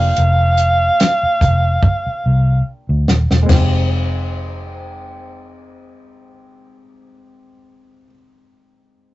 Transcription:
0.00 0.11 F1 medium
0.00 3.02 A#3 medium
0.00 3.02 D4 soft
0.00 3.03 F4 medium
0.00 3.04 G4 medium
0.00 2.67 F5 loud
0.16 0.88 F1 medium
0.16 closed hi-hat medium
0.57 closed hi-hat medium
1.00 snare loud
1.00 closed hi-hat medium
1.23 muted fingered electric bass stroke soft
1.41 1.77 F1 medium
1.41 kick medium
1.41 closed hi-hat medium
1.83 kick medium
2.07 muted fingered electric bass stroke soft
2.26 2.61 C2 medium
2.89 3.05 D2 medium
3.08 3.27 D#1 medium
3.08 snare medium
3.30 3.46 E1 medium
3.30 snare medium
3.43 8.03 G#3 medium
3.43 8.07 C4 medium
3.49 8.10 F1 medium
3.49 8.11 D#4 medium
3.49 snare medium
3.49 floor tom medium
3.49 crash medium
3.53 8.14 G4 medium

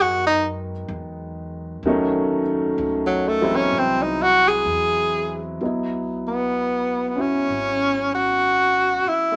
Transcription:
0.00 0.88 F#2 medium
0.00 0.71 D#3 medium
0.00 0.71 F#3 medium
0.00 0.72 G#3 medium
0.00 0.71 B3 medium
0.00 0.72 D#4 medium
0.00 0.26 F#4 medium
0.26 0.45 D#4 medium
0.89 1.80 E2 loud
1.83 2.74 D#2 medium
1.83 2.41 D#3 medium
1.83 2.41 F#3 medium
1.83 2.41 A3 medium
1.87 2.42 C#4 medium
1.87 2.42 D#4 medium
2.78 3.69 C#2 medium
3.06 3.30 F#3 medium
3.28 3.57 A3 medium
3.41 4.61 E3 medium
3.41 4.61 F#3 medium
3.41 4.61 G#3 medium
3.41 4.62 C4 medium
3.41 4.61 E4 medium
3.55 3.80 C#4 medium
3.72 4.63 C2 medium
3.78 4.04 C4 medium
4.02 4.24 D#4 medium
4.23 4.50 F#4 loud
4.48 5.44 G#4 medium
4.65 5.57 E2 loud
5.61 7.45 C#2 medium
5.61 9.36 F#3 soft
5.61 9.34 B3 soft
5.61 9.36 D#5 soft
5.66 7.16 E4 soft
6.28 7.09 B3 medium
7.09 7.22 B3 medium
7.15 9.36 C#4 soft
7.15 9.36 E4 soft
7.15 9.36 F#4 soft
7.21 8.13 C#4 medium
7.48 9.01 G#1 medium
8.14 9.10 F#4 medium
9.05 9.36 E4 medium
9.05 muted upright bass stroke soft
9.32 9.36 G#3 soft

